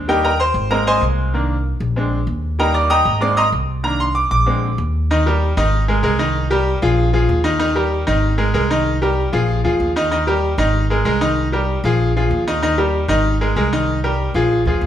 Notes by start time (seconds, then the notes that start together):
Already playing: D#2
0.08 G3 A#3 D#4 G4 A#4 D#5 G5
0.25 A#4 D#5 G5 A#5
0.40 C5 C6
0.54 G#1
0.70 G#3 A#3 C4 A#4 D#5 A#5
0.87 C5 D#5 G#5 C6
1.01 C2
1.34 D#3 A#3 D4
1.80 A#1
1.96 G#3 C4 D4
2.27 D#2
2.59 G3 A#3 D#4 A#4 D#5 G5 A#5
2.74 D5 D6
2.90 D#5 G5 A#5 D#6
3.05 G#1
3.21 G#3 A#3 C4 D5 D6
3.37 D#5 A#5 C6 D#6
3.52 C2
3.83 D#3 A#3 D4 A#5
4.00 C6
4.15 D6
4.31 A#1 D6
4.46 D3 G#3 C4
4.78 D#2
5.11 D#3 D#4 D#5
5.26 G3 G4 A#4
5.57 G#1 D#3 D#4 D#5
5.88 G#3 G#4 A#4
6.03 C2 G#3 G#4 A#4
6.19 D#3 D#4 D#5
6.50 G3 G4 A#4
6.82 A#1 F3 F4 G#4
7.13 F3 F4 G#4
7.29 D#2
7.44 D#3 D#4 D#5
7.59 D#3 D#4 D#5
7.75 G3 G4 A#4
8.07 G#1 D#3 D#4 D#5
8.38 G#3 G#4 A#4
8.54 C2 G#3 G#4 A#4
8.70 D#3 D#4 D#5
9.02 G3 G4 A#4
9.32 A#1 F3 F4 G#4
9.64 D2 F3 F4 G#4
9.80 D#2
9.96 D#3 D#4 D#5
10.11 D#3 D#4 D#5
10.27 G3 G4 A#4
10.58 G#1 D#3 D#4 D#5
10.90 G#3 G#4 A#4
11.05 C2 G#3 G#4 A#4
11.21 D#3 D#4 D#5
11.52 G3 G4 A#4
11.84 A#1 F3 F4 G#4
12.16 F3 F4 G#4
12.31 D#2
12.47 D#3 D#4 D#5
12.62 D#3 D#4 D#5
12.78 G3 G4 A#4
13.08 G#1 D#3 D#4 D#5
13.41 G#3 G#4 A#4
13.56 C2 G#3 G#4 A#4
13.73 D#3 D#4 D#5
14.04 G3 G4 A#4
14.34 A#1 F3 F4 G#4
14.65 D2 F3 F4 G#4
14.81 D#2